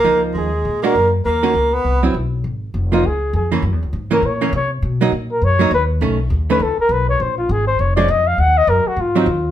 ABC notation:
X:1
M:4/4
L:1/8
Q:"Swing" 1/4=202
K:Db
V:1 name="Flugelhorn"
B z A3 B2 z | B3 _c2 z3 | z3 F A2 A z | z3 B d2 d z |
z3 B d2 _c z | z3 _c =A B c d | c F A c d =d e f | g e B G F4 |]
V:2 name="Hollow-body jazz guitar"
[F,B,E]3 z2 [A,=D^F] z2 | z [E,B,DG] z3 [^F,C=E] z2 | z3 [F,B,E] z3 [_F,B,D] | z3 [_F,B,D] z [F,B,D] z2 |
z [G,B,E] z3 [G,B,E] z2 | [E,=A,D] z2 [E,A,D] z4 | z4 z [F,A,D] z2 | z4 z [G,CE] z2 |]
V:3 name="Tenor saxophone"
B, z A,3 B,2 z | B,3 _C2 z3 | z8 | z8 |
z8 | z8 | z8 | z8 |]
V:4 name="Upright bass" clef=bass
D,,2 E,,2 B,,2 ^F,,2 | E,,2 D,,2 C,,2 =B,,,2 | A,,,2 F,,,2 D,,2 F,,2 | (3G,, _F,, D,, A,,2 B,,2 C,2 |
_C,2 B,,2 G,,2 E,,2 | _C,,2 E,,2 D,, z C,,2 | B,,,2 A,,,2 F,,,2 F,,2 | E,,2 G,, z A,,2 E,,2 |]